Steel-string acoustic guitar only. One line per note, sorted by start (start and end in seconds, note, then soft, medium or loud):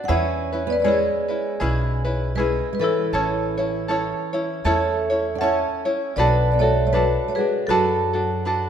0.04 0.08 D4 medium
0.09 0.65 C#4 medium
0.67 0.77 B3 medium
0.80 0.85 B3 medium
0.84 2.33 G#3 medium
2.35 2.69 G#3 medium
2.73 2.80 G#3 medium
2.79 4.60 E3 medium
4.65 5.31 A3 medium
5.35 5.41 D4 medium
5.41 6.13 C#4 medium
6.17 6.50 B3 medium
6.53 6.61 B3 medium
6.60 6.85 A3 medium
6.87 6.92 A3 medium
6.93 7.02 F#3 medium
7.28 7.36 A3 medium
7.37 7.67 G#3 medium
7.69 8.69 F#3 medium